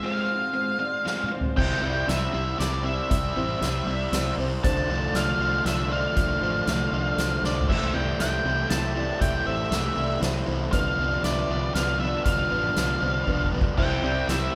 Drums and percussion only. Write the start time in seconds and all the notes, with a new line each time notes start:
1.06 snare
1.24 mid tom
1.41 floor tom
1.58 kick, crash
2.09 snare, closed hi-hat
2.60 snare, closed hi-hat
3.11 kick, closed hi-hat
3.62 snare, closed hi-hat
4.13 snare, closed hi-hat
4.64 kick, closed hi-hat
5.15 snare, closed hi-hat
5.66 snare, closed hi-hat
6.17 kick, closed hi-hat
6.67 snare, closed hi-hat
7.18 snare, closed hi-hat
7.44 snare
7.61 floor tom
7.69 kick, crash
8.20 snare, closed hi-hat
8.70 snare, closed hi-hat
9.21 kick, closed hi-hat
9.72 snare, closed hi-hat
10.22 snare, closed hi-hat
10.73 kick, closed hi-hat
11.24 snare, closed hi-hat
11.75 snare, closed hi-hat
12.25 kick, closed hi-hat
12.76 snare, closed hi-hat
13.27 kick
13.44 kick
13.61 kick
13.78 kick, crash
14.29 snare, closed hi-hat